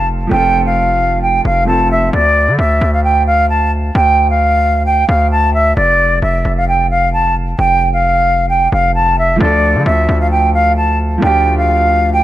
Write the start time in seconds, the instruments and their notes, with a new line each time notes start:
Already playing: 808-style bass F1, grand piano F3 A3 C4 F4 A4
0.27 grand piano F3 A3
0.31 808-style bass F1, grand piano C4 F4, flute G5
0.36 grand piano A4
0.66 flute F5
1.22 flute G5
1.45 808-style bass F1, flute F5
1.65 grand piano F3 A3 C4 F4, flute A5
1.70 grand piano A4
1.91 flute E5
2.13 808-style bass D2, flute D5
2.48 808-style bass D3
2.58 808-style bass D2, flute E5
2.81 808-style bass D2
2.93 flute F5
3.04 flute G5
3.27 flute F5
3.50 flute A5
3.95 808-style bass D2, flute G5
4.30 flute F5
4.86 flute G5
5.09 808-style bass D2, flute F5
5.31 flute A5
5.54 flute E5
5.76 808-style bass F1, flute D5
6.22 808-style bass F1, flute E5
6.45 808-style bass F1
6.57 flute F5
6.68 flute G5
6.90 flute F5
7.13 flute A5
7.59 808-style bass F1, flute G5
7.93 flute F5
8.49 flute G5
8.72 808-style bass F1, flute F5
8.95 flute A5
9.18 flute E5
9.36 grand piano F3 A3
9.40 808-style bass D2, grand piano D4 F4, flute D5
9.45 grand piano A4
9.75 808-style bass D3
9.86 808-style bass D2, flute E5
10.09 808-style bass D2
10.21 flute F5
10.31 flute G5
10.54 flute F5
10.77 flute A5
11.18 grand piano F3 A3
11.22 808-style bass D2, grand piano D4 F4, flute G5
11.27 grand piano G4
11.58 flute F5
12.13 flute G5